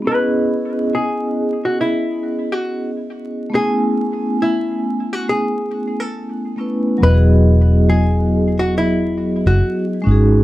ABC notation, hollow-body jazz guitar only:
X:1
M:4/4
L:1/16
Q:"Swing 16ths" 1/4=69
K:E
V:1 name="Hollow-body jazz guitar"
B4 G3 F E3 F2 z3 | G4 E3 F G3 A4- A | B4 G3 F E3 F2 z3 |]